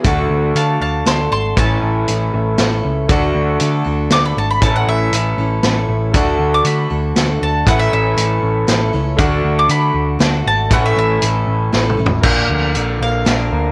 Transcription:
<<
  \new Staff \with { instrumentName = "Mandolin" } { \time 3/4 \key d \major \tempo 4 = 118 r4 <f'' a''>8 <f'' a''>8 <a'' c'''>8 <a'' c'''>8 | a''2 r4 | r2 d'''16 b''16 a''16 b''16 | a''16 fis''16 e''8 e''2 |
r8. d'''16 b''4. a''8 | fis''16 e''16 e''2 r8 | r8. d'''16 b''4. a''8 | fis''16 e''16 e''2 r8 |
r4. f''4. | }
  \new Staff \with { instrumentName = "Grand piano" } { \time 3/4 \key d \major <a' d'' fis''>2. | <a' cis'' e''>4. <a' cis'' e''>4. | <a' d'' fis''>2. | <a' cis'' e''>2. |
<a' d'' fis''>2. | <a' cis'' e''>2. | <a' d'' fis''>2. | <a' cis'' e''>2. |
<bes' d'' f''>2. | }
  \new Staff \with { instrumentName = "Steel-string acoustic guitar" } { \time 3/4 \key d \major <d a d' fis' a'>4 <a d' fis' a'>4 <a d' fis' a'>4 | <a, e a cis' e' a'>4 <a cis' e' a'>4 <a cis' e' a'>4 | <d a d' fis' a'>4 <a d' fis' a'>8 <d' fis' a'>8 <a d' fis' a'>8 <d' fis' a'>8 | <a, e a cis' e' a'>4 <a cis' e' a'>8 <a cis' e' a'>8 <a cis' e' a'>4 |
<d a d' fis' a'>4 <a d' fis' a'>8 <d' fis' a'>8 <a d' fis' a'>4 | <a, e a cis' e' a'>4 <a cis' e' a'>4 <a cis' e' a'>8 <a cis' e' a'>8 | <d a d' fis' a'>4 <a d' fis' a'>4 <a d' fis' a'>4 | <a, e a cis' e' a'>4 <a cis' e' a'>4 <a cis' e' a'>8 <a cis' e' a'>8 |
<bes, f bes d' f' bes'>4 <bes d' f' bes'>4 <bes d' f' bes'>4 | }
  \new Staff \with { instrumentName = "Clean electric guitar" } { \time 3/4 \key d \major <d a d' fis'>2. | <a, e a cis' e'>2. | <d a d' fis'>2. | <a, e a cis' e'>2. |
<d a d' fis'>2. | <a, e a cis' e'>2. | <d a d' fis'>2. | <a, e a cis' e'>2. |
bes,8 d8 d8 bes8 d'8 bes8 | }
  \new Staff \with { instrumentName = "Picked electric bass" } { \clef bass \time 3/4 \key d \major d,8 d,8 d8 d,8 d,8 gis,,8 | a,,8 a,,8 a,,8 a,,8 a,,8 cis,8 | d,8 d,8 d8 d,8 d,8 gis,,8 | a,,8 a,,8 a,,8 a,,8 a,,8 a,,8 |
d,8 d,8 d8 d,8 d,8 d,8 | a,,8 a,,8 a,,8 a,,8 a,,8 cis,8 | d,8 d,8 d8 d,8 d,8 gis,,8 | a,,8 a,,8 a,,8 a,,8 a,,8 a,,8 |
bes,,8 d,8 bes,,8 bes,,8 bes,,8 d,8 | }
  \new DrumStaff \with { instrumentName = "Drums" } \drummode { \time 3/4 <hh bd>4 hh4 <hh sn>4 | <hh bd>4 hh4 <hh sn>4 | <hh bd>4 hh4 <hh sn>4 | <hh bd>4 hh4 <hh sn>4 |
<hh bd>4 hh4 <hh sn>4 | <hh bd>4 hh4 <hh sn>4 | <hh bd>4 hh4 <hh sn>4 | <hh bd>4 hh4 \tuplet 3/2 { sn8 toml8 tomfh8 } |
<cymc bd>4 hh4 <hh sn>4 | }
>>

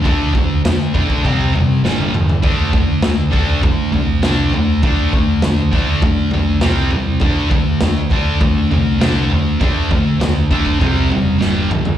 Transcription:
<<
  \new Staff \with { instrumentName = "Distorted electric guitar" } { \clef bass \time 4/4 \key c \lydian \tempo 4 = 100 <d a d'>8 <d a>8 <d a>8 <d a d'>8 <c g c'>8 <c g>8 <g, d g>8 <g, d>8 | <d a d'>8 <d a>8 <d a>8 <d a d'>8 <d a>8 <d a>8 <d a d'>8 <d a>8 | <d a d'>8 <d a>8 <d a>8 <d a d'>8 <d a>8 <d a>8 <c g c'>8 <c g>8 | <d a d'>8 <d a>8 <d a>8 <d a d'>8 <d a>8 <d a>8 <d a d'>8 <d a>8 |
<d a d'>8 <d a>8 <d a>8 <d a d'>8 <c g c'>8 <c g>8 <g, d g>8 <g, d>8 | }
  \new Staff \with { instrumentName = "Picked electric bass" } { \clef bass \time 4/4 \key c \lydian d,8 d,8 d,8 b,,8 c,8 fis,,8 g,,8 e,8 | d,4 d,4 d,8 c,8 c,8 d,8 | d,8 d,8 d,8 d,8 d8 b,,8 c,8 c,8 | d,4 d,4 d,8 c,8 c,8 d,8 |
d,8 d,8 d,8 b,,8 c,8 fis,,8 g,,8 cis,8 | }
  \new DrumStaff \with { instrumentName = "Drums" } \drummode { \time 4/4 <bd tomfh>8 <bd tomfh>8 <sn tomfh>8 <bd tomfh>16 bd16 <bd tomfh>8 tomfh8 sn16 tommh16 toml16 tomfh16 | <bd tomfh>8 <bd tomfh>8 <sn tomfh>8 <bd tomfh>8 <bd tomfh>8 tomfh8 <sn tomfh>8 tomfh8 | <bd tomfh>8 <bd tomfh>8 <sn tomfh>8 <bd tomfh>8 <bd tomfh>8 tomfh8 <sn tomfh>8 tomfh8 | <bd tomfh>8 <bd tomfh>8 <sn tomfh>8 <bd tomfh>8 <bd tomfh>8 tomfh8 <sn tomfh>8 tomfh8 |
<bd tomfh>8 <bd tomfh>8 <sn tomfh>8 <bd tomfh>16 bd16 <bd tomfh>8 tomfh8 sn8 toml16 tomfh16 | }
>>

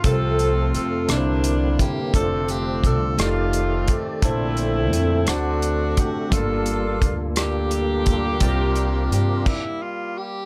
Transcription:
<<
  \new Staff \with { instrumentName = "Saxophone section" } { \time 6/8 \key f \major \tempo 4. = 57 << { a'4 a'8 d'4 g'8 | a'8 g'8 a'8 f'4 r8 | e'4. d'4 g'8 | a'4 r8 g'4.~ |
g'4 g'8 e'8 f'8 g'8 | } \\ { <c' f'>4. <g bes>4. | <c' d'>4. <a c'>4. | <a c'>4. <a fis'>4. | <d' f'>4. <bes d'>4.~ |
<bes d'>4. <g bes>4. | } >> }
  \new Staff \with { instrumentName = "Grand piano" } { \time 6/8 \key f \major <a c' f' bes' c''>4. <bes d' e' bes' c''>4. | <a d' f' c''>4. <a ees' g' d''>4. | <a d' a' c''>4. <a d' c'' fis''>4. | <g a bes f' a'>2. |
<g c' f' bes'>4. r4. | }
  \new Staff \with { instrumentName = "Grand piano" } { \clef bass \time 6/8 \key f \major c4. c4. | r2. | bes,4. d4. | g,4. r4. |
c4. r4. | }
  \new Staff \with { instrumentName = "Tonewheel organ" } { \time 6/8 \key f \major <f a c' a'>4. <d bes c' e'>4. | <d a c' f'>4. <ees g a g' d''>4. | <d a c' a'>4. <f a c' d' a'>4. | <g bes f' a'>2. |
<g c' f' a' bes'>4. r4. | }
  \new Staff \with { instrumentName = "Upright bass" } { \clef bass \time 6/8 \key f \major c,4 f,8 c,4 r8 | f,,4 c,8 f,,4 r8 | bes,,4 f,8 d,4 r8 | g,,4 d,2 |
c,4 g,8 r4. | }
  \new DrumStaff \with { instrumentName = "Drums" } \drummode { \time 6/8 <hh bd>8 hh8 hh8 <hh ss>8 hh8 <hh bd>8 | <hh bd>8 hh8 <hh bd>8 <hh ss>8 hh8 <hh bd>8 | <hh bd>8 hh8 hh8 <hh ss>8 hh8 <hh bd>8 | <hh bd>8 hh8 <hh bd>8 <hh ss>8 hh8 <hh bd>8 |
<hh bd>8 hh8 hh8 <cymc bd>4. | }
>>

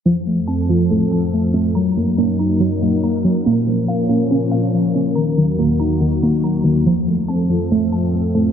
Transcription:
<<
  \new Staff \with { instrumentName = "Synth pluck" } { \time 4/4 \key f \phrygian \tempo 4 = 141 f4 a''8 f8 a8 a''4 a8 | bes''8 ges8 bes8 bes''8 ges8 bes8 bes''8 ges8 | bes4 f''8 bes8 des'8 f''4 des'8 | bes''8 ees8 bes8 bes''8 ees8 bes8 bes''8 ees8 |
f4 a''8 f8 a8 a''4 a8 | }
  \new Staff \with { instrumentName = "Synth keys" } { \time 4/4 \key f \phrygian f8 a8 c'8 f'4 f8 a8 c'8 | ges8 bes8 des'8 ees'4 ges8 bes8 des'8 | bes,8 f8 bes8 des'4 bes,8 f8 bes8 | ees8 ges8 bes8 ees'4 ees8 ges8 bes8 |
f8 a8 c'8 f'4 f8 a8 c'8 | }
  \new Staff \with { instrumentName = "Analog synth pad" } { \clef bass \time 4/4 \key f \phrygian << { a'1 | bes'1~ | bes'1~ | bes'1 |
a'1 | } \\ { <f, f c'>1 | <ges, ges ees'>1 | <bes, f des'>1 | <ees, ees ges'>1 |
<f, f c'>1 | } >> }
>>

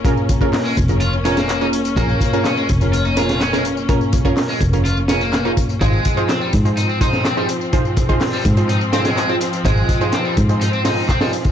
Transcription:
<<
  \new Staff \with { instrumentName = "Synth stab" } { \time 4/4 \key bes \minor \tempo 4 = 125 <des' f' aes' bes'>8. <des' f' aes' bes'>8 r8 <des' f' aes' bes'>16 r8 <des' f' aes' bes'>16 r8 <des' f' aes' bes'>16 r8 | <des' f' aes' bes'>8. <des' f' aes' bes'>8 r8 <des' f' aes' bes'>16 r8 <des' f' aes' bes'>16 r8 <des' f' aes' bes'>16 r8 | <des' f' aes' bes'>8. <des' f' aes' bes'>8 r8 <des' f' aes' bes'>16 r8 <des' f' aes' bes'>16 r8 <des' f' aes' bes'>16 r8 | <ees' f' aes' c''>8. <ees' f' aes' c''>8 r8 <ees' f' aes' c''>16 r8 <ees' f' aes' c''>16 r8 <ees' f' aes' c''>16 r8 |
<ees' f' aes' c''>8. <ees' f' aes' c''>8 r8 <ees' f' aes' c''>16 r8 <ees' f' aes' c''>16 r8 <ees' f' aes' c''>16 r8 | <ees' f' aes' c''>8. <ees' f' aes' c''>8 r8 <ees' f' aes' c''>16 r8 <ees' f' aes' c''>16 r8 <ees' f' aes' c''>16 r8 | }
  \new Staff \with { instrumentName = "Overdriven electric guitar" } { \time 4/4 \key bes \minor r4 r16 aes16 r8 f'16 r16 des'16 bes8 ees'16 r8 | bes4 des'16 aes16 r8 f'16 ees'16 f'8 des'16 aes16 r8 | r4 r16 aes16 r8 f'16 r16 des'16 bes8 ees'16 r8 | aes4 c'16 g16 r8 ees'16 c'16 ees'8 c'16 g16 r8 |
r4 r16 g16 r8 ees'16 r16 c'16 aes8 c'16 r8 | aes4 c'16 g16 r8 ees'16 c'16 ees'8 c'16 g16 r8 | }
  \new Staff \with { instrumentName = "String section" } { \time 4/4 \key bes \minor <bes des'>1~ | <bes des'>1~ | <bes des'>1 | <f c'>1~ |
<f c'>1~ | <f c'>1 | }
  \new Staff \with { instrumentName = "Fingered electric bass" } { \clef bass \time 4/4 \key bes \minor f,,8 r4 f,,2~ f,,8 | bes,,16 r4 r16 f,,2~ f,,8~ | f,,8 r4 f,,2~ f,,16 c,16 | aes,,16 r4 r16 aes,2~ aes,8~ |
aes,8 r4 aes,2~ aes,8 | aes,,16 r4 r16 aes,2~ aes,8 | }
  \new DrumStaff \with { instrumentName = "Drums" } \drummode { \time 4/4 <hh bd tamb>16 tamb16 <hh hho bd tamb>16 <bd tamb>16 <hc hho sn tamb>16 tamb16 <hh hho bd tamb>16 <hh tamb>16 <hh tamb>16 tamb16 <hh hho sn tamb>16 <hh sn tamb>16 <hc hh tamb>16 tamb16 <hh hho tamb>16 <hh tamb>16 | <hh bd tamb>16 tamb16 <hh hho bd tamb>16 tamb16 <hc hh sn tamb>16 tamb16 <hh hho bd tamb>16 <hh tamb>16 <hh tamb>16 tamb16 <hh hho sn tamb>16 <hh sn tamb>16 <hc hh sn tamb>16 <hh sn tamb>16 <hh hho tamb>16 tamb16 | <hh bd tamb>16 tamb16 <hh hho bd tamb>16 <bd tamb>16 <hc hho sn tamb>16 tamb16 <hh hho bd tamb>16 <hh tamb>16 <hh tamb>16 tamb16 <hh hho sn tamb>16 <hh tamb>16 <hc hh sn tamb>16 tamb16 <hh hho bd tamb>16 <hh tamb>16 | <hh bd tamb>16 tamb16 <hh hho bd tamb>16 tamb16 <hc hh sn tamb>16 tamb16 <hh hho bd tamb>16 <hh tamb>16 <hh tamb>16 tamb16 <hh hho bd tamb>16 <sn tamb>16 <hc hh sn tamb>16 tamb16 <hh hho tamb>16 tamb16 |
<hh bd tamb>16 tamb16 <hh hho bd tamb>16 <bd tamb>16 <hc hho sn tamb>16 tamb16 <hh hho bd tamb>16 <hh tamb>16 <hh tamb>16 tamb16 <hh hho sn tamb>16 <hh sn tamb>16 <hc hh tamb>16 tamb16 <hh hho tamb>16 <hh tamb>16 | <hh bd tamb>16 tamb16 <hh hho bd tamb>16 tamb16 <hc hh sn tamb>16 tamb16 <hh hho bd tamb>16 <hh tamb>16 <hh tamb>16 tamb16 <hho sn tamb>16 tamb16 <hc hh bd tamb>16 <hho sn tamb>16 <hho tamb>16 <hh bd tamb>16 | }
>>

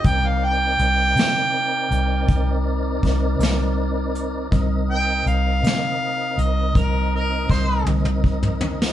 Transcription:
<<
  \new Staff \with { instrumentName = "Harmonica" } { \time 12/8 \key c \minor \tempo 4. = 54 g''16 f''16 g''2. r2 r8 | r8 g''8 f''4. ees''8 bes'8 bes'8 c''8 r4. | }
  \new Staff \with { instrumentName = "Tonewheel organ" } { \time 12/8 \key c \minor <c' ees' bes' d''>1. | <c' ees' bes' ees''>1. | }
  \new Staff \with { instrumentName = "Fingered electric bass" } { \clef bass \time 12/8 \key c \minor c,4 c,8 c4 c,8 c,4 c,8 c,4. | c,4 c,8 c4 c,8 c,4 c,8 c,4. | }
  \new DrumStaff \with { instrumentName = "Drums" } \drummode { \time 12/8 <hh bd>4 hh8 <hh sn>4 hh8 <hh bd>4 <hh bd sn>8 <hh sn>4 hh8 | <hh bd>4 hh8 <hh sn>4 hh8 <hh bd>4 <hh bd sn>8 tommh16 tommh16 bd16 toml16 tomfh16 sn16 | }
>>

